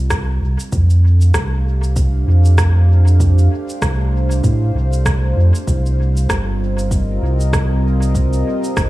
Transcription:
0.00 0.39 C2 medium
0.00 0.72 G3 medium
0.00 2.46 C4 medium
0.00 2.27 F4 medium
0.00 0.72 A#4 medium
0.00 0.73 D#5 medium
0.10 kick loud
0.10 cross-stick medium
0.10 cabasa medium
0.42 0.58 C2 medium
0.60 cabasa soft
0.72 1.32 F2 medium
0.72 5.68 A3 medium
0.72 kick loud
0.72 cabasa soft
0.90 5.68 D4 medium
0.90 cabasa soft
0.99 7.68 F5 medium
1.06 6.82 G4 medium
1.21 cabasa soft
1.34 2.25 C2 medium
1.34 kick loud
1.34 cross-stick medium
1.34 cabasa soft
1.69 6.59 C5 medium
1.83 cabasa soft
1.96 kick loud
1.96 cabasa medium
2.27 3.49 F2 medium
2.45 cabasa soft
2.58 kick loud
2.58 cross-stick medium
2.58 cabasa soft
3.07 cabasa soft
3.20 kick loud
3.20 cabasa soft
3.39 cabasa soft
3.70 cabasa soft
3.82 4.41 C2 medium
3.82 kick loud
3.82 cross-stick medium
3.82 cabasa soft
4.31 cabasa soft
4.44 4.72 A2 medium
4.44 kick loud
4.44 cabasa soft
4.75 5.34 C2 medium
4.93 cabasa soft
5.06 kick medium
5.06 cross-stick medium
5.06 cabasa soft
5.37 5.53 F2 medium
5.55 cabasa soft
5.67 6.27 C2 loud
5.67 8.90 G3 medium
5.67 kick medium
5.67 cabasa soft
5.86 8.90 C4 medium
5.86 8.90 F4 medium
5.86 cabasa soft
6.17 cabasa soft
6.29 7.20 G1 medium
6.29 kick medium
6.29 cross-stick medium
6.29 cabasa soft
6.52 8.90 D#5 medium
6.68 8.90 A#4 medium
6.79 cabasa soft
6.91 kick medium
6.91 cabasa soft
7.22 8.43 C2 medium
7.40 cabasa soft
7.53 kick medium
7.53 cross-stick medium
7.53 cabasa soft
8.02 cabasa soft
8.15 kick medium
8.15 cabasa soft
8.33 cabasa soft
8.64 cabasa soft
8.77 8.90 G1 medium
8.77 kick medium
8.77 cross-stick medium
8.77 cabasa soft

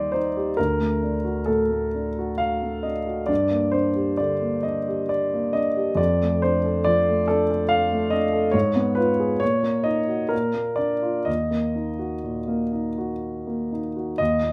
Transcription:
0.00 0.54 D#2 soft
0.00 0.60 D#3 soft
0.00 0.60 G3 soft
0.00 0.14 D#4 soft
0.00 0.37 G4 soft
0.00 0.12 C5 medium
0.00 0.60 D5 medium
0.00 0.60 D#5 medium
0.12 0.49 D#4 soft
0.12 0.57 C5 medium
0.37 0.58 G4 soft
0.57 3.26 D2 soft
0.57 1.48 A#4 medium
0.80 1.16 A3 soft
1.03 1.39 D4 soft
1.25 1.62 F#4 soft
1.46 1.85 A2 soft
1.46 2.39 A4 soft
1.70 2.08 A3 soft
1.95 2.31 D4 soft
2.19 2.90 F#4 soft
2.38 2.84 F5 medium
2.62 2.98 A3 soft
2.83 3.21 D4 soft
2.83 3.29 D#5 soft
3.07 3.29 F#4 soft
3.26 5.94 G2 soft
3.26 3.73 D5 medium
3.51 3.88 A#3 soft
3.71 4.11 D4 soft
3.71 4.19 C5 soft
3.96 4.33 G4 soft
4.17 4.56 D3 soft
4.17 4.64 D5 medium
4.42 4.78 A#3 soft
4.63 5.01 D4 soft
4.63 5.09 D#5 soft
4.88 5.59 G4 soft
5.09 5.54 D5 medium
5.34 5.68 A#3 soft
5.53 5.90 D4 soft
5.53 5.98 D#5 medium
5.77 5.99 G4 soft
5.95 8.49 F2 soft
5.95 6.42 D5 medium
6.22 6.56 A3 soft
6.42 6.78 D4 soft
6.42 6.86 C5 medium
6.66 6.99 A4 soft
6.85 7.20 F3 soft
6.85 7.28 D5 medium
7.09 7.42 A3 soft
7.28 7.63 D4 soft
7.28 7.49 A4 medium
7.51 8.17 A4 soft
7.69 8.11 F5 medium
7.92 8.25 A3 soft
8.10 8.46 D4 soft
8.10 8.54 D#5 medium
8.33 8.54 A4 soft
8.51 9.38 G#2 soft
8.51 8.96 C#5 medium
8.76 9.11 B3 soft
8.95 9.32 F4 soft
8.95 9.40 B4 medium
9.20 9.41 G#4 soft
9.40 10.30 A#2 soft
9.40 9.85 C#5 medium
9.63 9.99 A#3 soft
9.84 10.22 D#4 soft
9.84 10.31 D#5 medium
10.08 10.32 F#4 soft
10.29 11.24 A#2 soft
10.29 10.78 A#4 medium
10.54 10.93 A#3 soft
10.76 11.17 D4 soft
10.76 11.26 D5 medium
11.02 11.27 F4 soft
11.25 14.15 D#2 soft
11.25 13.71 D#5 medium
11.51 11.90 A#3 soft
11.75 12.15 D#4 soft
11.99 12.38 F#4 soft
12.23 12.63 A#2 soft
12.48 12.87 A#3 soft
12.72 13.12 D#4 soft
12.98 13.77 F#4 soft
13.47 13.87 A#3 soft
13.72 14.11 D#4 soft
13.96 14.20 F#4 soft
14.18 14.53 D#2 soft
14.18 14.53 D#5 medium
14.43 14.53 A#2 soft

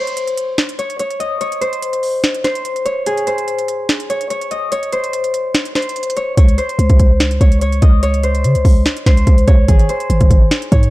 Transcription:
0.00 0.85 C5 medium
0.07 closed hi-hat medium
0.17 closed hi-hat medium
0.27 closed hi-hat medium
0.37 closed hi-hat medium
0.58 snare loud
0.58 closed hi-hat medium
0.69 closed hi-hat medium
0.79 0.99 C#5 medium
0.79 closed hi-hat medium
0.90 closed hi-hat medium
0.99 1.40 C#5 medium
0.99 closed hi-hat medium
1.10 closed hi-hat medium
1.20 2.98 D#5 medium
1.20 closed hi-hat medium
1.41 1.67 C#5 medium
1.41 closed hi-hat medium
1.52 closed hi-hat medium
1.61 2.44 C5 medium
1.61 closed hi-hat medium
1.73 closed hi-hat medium
1.82 closed hi-hat medium
1.93 closed hi-hat medium
2.03 open hi-hat medium
2.24 snare loud
2.24 closed hi-hat medium
2.34 closed hi-hat medium
2.44 2.91 C5 medium
2.44 snare medium
2.44 closed hi-hat medium
2.55 closed hi-hat medium
2.65 closed hi-hat medium
2.76 closed hi-hat medium
2.85 3.33 C#5 medium
2.85 closed hi-hat medium
3.06 5.34 G#4 medium
3.06 closed hi-hat medium
3.17 closed hi-hat medium
3.27 4.16 C5 medium
3.27 closed hi-hat medium
3.38 closed hi-hat medium
3.48 closed hi-hat medium
3.58 closed hi-hat medium
3.68 closed hi-hat medium
3.89 snare loud
3.89 closed hi-hat medium
4.00 closed hi-hat medium
4.10 4.30 C#5 medium
4.10 closed hi-hat medium
4.21 closed hi-hat medium
4.30 4.71 C#5 medium
4.30 closed hi-hat medium
4.41 closed hi-hat medium
4.51 6.30 D#5 medium
4.51 closed hi-hat medium
4.72 4.99 C#5 medium
4.72 closed hi-hat medium
4.83 closed hi-hat medium
4.92 5.75 C5 medium
4.92 closed hi-hat medium
5.04 closed hi-hat medium
5.13 closed hi-hat medium
5.24 closed hi-hat medium
5.34 closed hi-hat medium
5.54 snare loud
5.54 closed hi-hat medium
5.65 closed hi-hat medium
5.75 6.23 C5 medium
5.75 snare loud
5.75 closed hi-hat soft
5.82 closed hi-hat medium
5.89 closed hi-hat medium
5.96 closed hi-hat medium
6.03 closed hi-hat medium
6.10 closed hi-hat medium
6.17 6.37 C#5 medium
6.17 closed hi-hat medium
6.37 6.57 C#2 loud
6.37 6.64 C#5 medium
6.37 kick loud
6.37 closed hi-hat medium
6.48 closed hi-hat medium
6.58 7.47 C5 medium
6.58 closed hi-hat medium
6.69 closed hi-hat medium
6.79 6.89 C#2 loud
6.79 closed hi-hat medium
6.89 7.39 C#2 loud
6.89 kick medium
6.89 closed hi-hat medium
6.99 kick medium
6.99 closed hi-hat medium
7.20 snare loud
7.20 closed hi-hat medium
7.31 closed hi-hat medium
7.41 7.81 C#2 loud
7.41 7.61 C#5 medium
7.41 kick medium
7.41 closed hi-hat medium
7.52 closed hi-hat medium
7.61 8.03 C#5 medium
7.61 closed hi-hat medium
7.72 closed hi-hat medium
7.82 8.46 C#2 loud
7.82 9.60 D#5 medium
7.82 kick loud
7.82 closed hi-hat medium
8.03 8.30 C#5 medium
8.03 closed hi-hat medium
8.14 closed hi-hat medium
8.23 9.06 C5 medium
8.23 closed hi-hat medium
8.35 closed hi-hat medium
8.44 8.57 C#3 loud
8.44 closed hi-hat medium
8.55 8.64 C#2 medium
8.55 closed hi-hat medium
8.65 8.85 C#2 loud
8.65 kick medium
8.65 open hi-hat medium
8.86 snare loud
8.86 closed hi-hat medium
8.97 closed hi-hat medium
9.06 9.26 C#2 loud
9.06 9.53 C5 medium
9.06 kick medium
9.06 snare medium
9.06 closed hi-hat medium
9.17 closed hi-hat medium
9.27 9.47 C#2 loud
9.27 kick loud
9.27 closed hi-hat medium
9.38 closed hi-hat medium
9.47 9.68 C#2 loud
9.47 9.95 C#5 medium
9.47 kick loud
9.47 closed hi-hat medium
9.68 9.88 G#1 loud
9.68 10.90 G#4 medium
9.68 kick loud
9.68 closed hi-hat loud
9.79 closed hi-hat medium
9.89 10.78 C5 medium
9.89 closed hi-hat medium
10.00 closed hi-hat medium
10.10 10.20 G#1 loud
10.10 closed hi-hat medium
10.20 10.30 G#1 loud
10.20 kick medium
10.20 closed hi-hat medium
10.30 10.50 G#1 loud
10.30 kick medium
10.30 closed hi-hat medium
10.51 snare loud
10.51 closed hi-hat medium
10.62 closed hi-hat medium
10.72 10.90 G#2 loud
10.72 10.90 C#5 medium
10.72 kick medium
10.72 closed hi-hat medium
10.83 closed hi-hat medium

